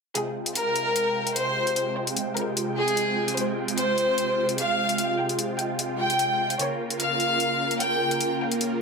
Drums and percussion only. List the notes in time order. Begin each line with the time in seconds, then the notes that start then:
0.15 closed hi-hat
0.46 closed hi-hat
0.55 closed hi-hat
0.76 closed hi-hat
0.96 closed hi-hat
1.27 closed hi-hat
1.36 closed hi-hat
1.67 closed hi-hat
1.76 closed hi-hat
2.07 closed hi-hat
2.16 closed hi-hat
2.37 closed hi-hat
2.57 closed hi-hat
2.88 closed hi-hat
2.97 closed hi-hat
3.28 closed hi-hat
3.37 closed hi-hat
3.68 closed hi-hat
3.78 closed hi-hat
3.98 closed hi-hat
4.18 closed hi-hat
4.49 closed hi-hat
4.58 closed hi-hat
4.89 closed hi-hat
4.98 closed hi-hat
5.29 closed hi-hat
5.39 closed hi-hat
5.59 closed hi-hat
5.79 closed hi-hat
6.10 closed hi-hat
6.19 closed hi-hat
6.50 closed hi-hat
6.59 closed hi-hat
6.90 closed hi-hat
7.00 closed hi-hat
7.20 closed hi-hat
7.40 closed hi-hat
7.71 closed hi-hat
7.80 closed hi-hat
8.11 closed hi-hat
8.21 closed hi-hat
8.52 closed hi-hat
8.61 closed hi-hat